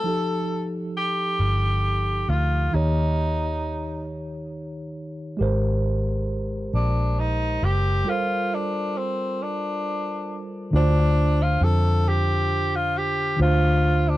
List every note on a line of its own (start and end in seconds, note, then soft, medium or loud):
0.00 2.67 F3 medium
0.00 0.68 A4 loud
0.05 1.35 F1 medium
0.05 2.68 D#4 soft
0.05 2.68 G4 soft
0.05 2.69 A4 medium
0.97 2.31 G4 medium
1.40 2.24 G1 medium
2.29 2.68 D2 medium
2.29 2.75 F4 medium
2.70 5.35 D#2 medium
2.70 5.34 D#3 medium
2.70 5.35 D#4 medium
2.70 4.06 D#4 medium
2.70 5.36 G4 medium
2.76 5.36 C#5 medium
5.37 6.69 G#1 medium
5.37 8.00 G#3 medium
5.37 8.01 G4 medium
5.37 8.02 A#4 medium
5.42 8.03 C5 medium
6.74 7.57 A#1 medium
6.74 7.21 D4 medium
7.19 7.66 D#4 medium
7.62 8.02 F#1 medium
7.62 8.11 G4 medium
8.04 10.67 G3 medium
8.04 10.68 F4 medium
8.04 10.69 A4 medium
8.04 10.69 A#4 medium
8.09 8.55 F4 medium
8.09 10.70 C5 medium
8.54 8.99 D4 medium
8.98 9.45 C4 medium
9.43 10.41 D4 medium
10.71 11.57 D2 medium
10.71 13.34 D3 medium
10.71 13.35 D4 medium
10.71 13.36 F4 medium
10.75 11.44 D4 medium
10.75 13.36 C5 medium
11.42 11.66 F4 medium
11.61 13.35 F2 medium
11.61 12.10 A4 medium
12.09 12.77 G4 medium
12.76 12.99 F4 medium
12.98 13.40 G4 medium
13.36 14.17 D2 medium
13.36 14.17 D3 medium
13.36 14.17 D4 medium
13.36 14.17 F4 medium
13.41 14.10 F4 medium
13.41 14.17 C5 medium
14.09 14.17 D4 medium